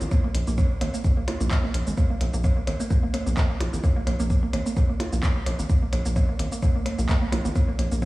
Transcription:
0.01 analog synth bass G#1, shaker
0.11 synth arpeggio sound A#3, kick, percussion blips, shaker
0.24 synth arpeggio sound A#3
0.35 analog synth bass A#1, closed hi-hat, percussion blips
0.48 analog synth bass A#1, synth arpeggio sound A#3, shaker
0.58 synth arpeggio sound A#3, kick, percussion blips, shaker
0.81 analog synth bass G#1, synth arpeggio sound A#3, closed hi-hat, percussion blips
0.94 synth arpeggio sound A#3, shaker
1.04 analog synth bass A#1, kick, percussion blips, shaker
1.17 synth arpeggio sound A#3
1.28 synth arpeggio sound A#3, closed hi-hat, percussion blips
1.40 analog synth bass A#1, synth arpeggio sound A#3, shaker
1.51 synth arpeggio sound A#3, kick, clap, percussion blips, shaker
1.64 synth arpeggio sound A#3
1.74 analog synth bass A#1, closed hi-hat, percussion blips
1.87 analog synth bass G#1, synth arpeggio sound G#3, shaker
1.97 synth arpeggio sound A#3, kick, percussion blips, shaker
2.10 synth arpeggio sound A#3
2.21 analog synth bass A#1, synth arpeggio sound A#3, closed hi-hat, percussion blips
2.34 analog synth bass A#1, synth arpeggio sound A#3, shaker
2.44 synth arpeggio sound A#3, kick, percussion blips, shaker
2.57 synth arpeggio sound A#3
2.67 analog synth bass G#1, synth arpeggio sound A#3, closed hi-hat, percussion blips
2.80 synth arpeggio sound A#3, shaker
2.90 analog synth bass A#1, synth arpeggio sound A#3, kick, percussion blips, shaker
3.03 synth arpeggio sound A#3
3.14 synth arpeggio sound A#3, closed hi-hat, percussion blips
3.26 analog synth bass A#1, synth arpeggio sound A#3, shaker
3.37 synth arpeggio sound A#3, kick, clap, percussion blips, shaker
3.50 synth arpeggio sound A#3
3.60 analog synth bass A#1, synth arpeggio sound A#3, closed hi-hat, percussion blips
3.73 analog synth bass G#1, synth arpeggio sound A#3, shaker
3.83 synth arpeggio sound A#3, kick, percussion blips, shaker
3.96 synth arpeggio sound A#3
4.07 analog synth bass A#1, synth arpeggio sound A#3, closed hi-hat, percussion blips
4.20 analog synth bass A#1, synth arpeggio sound A#3, shaker
4.30 synth arpeggio sound A#3, kick, percussion blips, shaker
4.43 synth arpeggio sound A#3
4.53 analog synth bass G#1, synth arpeggio sound A#3, closed hi-hat, percussion blips
4.66 synth arpeggio sound A#3, shaker
4.77 analog synth bass A#1, synth arpeggio sound A#3, kick, percussion blips, shaker
4.89 synth arpeggio sound A#3
5.00 synth arpeggio sound A#3, closed hi-hat, percussion blips
5.13 analog synth bass A#1, synth arpeggio sound A#3, shaker
5.23 synth arpeggio sound A#3, kick, clap, percussion blips, shaker
5.36 synth arpeggio sound A#3
5.46 analog synth bass A#1, synth arpeggio sound A#3, closed hi-hat, percussion blips
5.59 analog synth bass G#1, synth arpeggio sound A#3, shaker
5.69 synth arpeggio sound A#3, kick, percussion blips, shaker
5.82 synth arpeggio sound A#3
5.93 analog synth bass A#1, synth arpeggio sound A#3, closed hi-hat, percussion blips
6.06 analog synth bass A#1, synth arpeggio sound A#3, shaker
6.16 synth arpeggio sound A#3, kick, percussion blips, shaker
6.29 synth arpeggio sound A#3
6.39 analog synth bass G#1, synth arpeggio sound A#3, closed hi-hat, percussion blips
6.52 synth arpeggio sound A#3, shaker
6.62 analog synth bass A#1, synth arpeggio sound A#3, kick, percussion blips, shaker
6.76 synth arpeggio sound A#3
6.86 synth arpeggio sound A#3, closed hi-hat, percussion blips
6.99 analog synth bass A#1, synth arpeggio sound A#3, shaker
7.09 synth arpeggio sound A#3, kick, clap, percussion blips, shaker
7.22 synth arpeggio sound A#3
7.32 analog synth bass A#1, synth arpeggio sound A#3, closed hi-hat, percussion blips
7.45 analog synth bass G#1, synth arpeggio sound A#3, shaker
7.56 synth arpeggio sound A#3, kick, percussion blips, shaker
7.68 synth arpeggio sound A#3
7.79 analog synth bass A#1, synth arpeggio sound A#3, closed hi-hat, percussion blips
7.92 analog synth bass A#1, synth arpeggio sound A#3, shaker

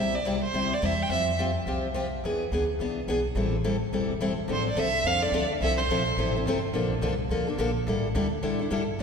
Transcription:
Already playing: upright bass C2, violin E5
0.00 steel-string acoustic guitar C3 G3 C4 E4 G4
0.15 violin D5
0.25 steel-string acoustic guitar C3 G3 C4 E4 G4
0.44 violin C5
0.53 upright bass D2, steel-string acoustic guitar C3 G3 C4 E4 G4
0.74 violin D5
0.82 upright bass E2, steel-string acoustic guitar C3 G3 C4 E4 G4, violin E5
1.03 violin G5
1.09 upright bass F2, steel-string acoustic guitar F3 C4 F4 G4, violin E5
1.39 steel-string acoustic guitar F3 C4 F4 G4
1.66 upright bass C2, steel-string acoustic guitar F3 C4 F4 G4
1.94 steel-string acoustic guitar F3 C4 F4 G4
2.24 upright bass E2, steel-string acoustic guitar E3 B3 D4 G#4
2.51 upright bass D2, steel-string acoustic guitar E3 B3 D4 G#4
2.79 upright bass C2, steel-string acoustic guitar E3 B3 D4 G#4
3.07 upright bass B1, steel-string acoustic guitar E3 B3 D4 G#4
3.35 upright bass A1, steel-string acoustic guitar E3 G3 C4 E4 A4
3.64 steel-string acoustic guitar E3 G3 C4 E4 A4
3.92 upright bass E1, steel-string acoustic guitar E3 G3 C4 E4 A4
4.20 steel-string acoustic guitar E3 G3 C4 E4 A4
4.48 upright bass A1, steel-string acoustic guitar D3 F3 C4 D4 A4
4.52 violin C5
4.69 violin D5
4.75 upright bass C2, steel-string acoustic guitar D3 F3 C4 D4 A4
4.79 violin E5
5.04 upright bass F2, steel-string acoustic guitar D3 F3 C4 D4 A4, violin F5
5.22 steel-string acoustic guitar C4 D4 A4, violin D5
5.31 upright bass D2, steel-string acoustic guitar D3 F3 C4 D4 A4
5.60 upright bass C2, steel-string acoustic guitar C3 F3 C4 E4 A4, violin E5
5.77 violin C5
5.89 upright bass A#1, steel-string acoustic guitar C3 F3 C4 E4 A4
6.16 upright bass A1, steel-string acoustic guitar C3 F3 C4 E4 A4
6.36 steel-string acoustic guitar C4 E4 A4
6.46 upright bass G1, steel-string acoustic guitar C3 F3 C4 E4 A4
6.73 upright bass A#1, steel-string acoustic guitar D3 F3 A#3 D4 A4
7.01 upright bass C2, steel-string acoustic guitar D3 F3 A#3 D4 A4
7.29 upright bass D2, steel-string acoustic guitar D3 F3 A#3 D4 A4
7.47 steel-string acoustic guitar A#3 D4 A4
7.58 upright bass A#1, steel-string acoustic guitar D3 F3 A#3 D4 A4
7.86 upright bass A1, steel-string acoustic guitar D3 G3 D4 E4 A4
8.15 upright bass D2, steel-string acoustic guitar D3 G3 D4 E4 A4
8.42 upright bass A2, steel-string acoustic guitar D3 G3 D4 E4 A4
8.59 steel-string acoustic guitar D4 E4 A4
8.70 upright bass G2, steel-string acoustic guitar D3 G3 D4 E4 A4
8.99 upright bass F2, steel-string acoustic guitar D3

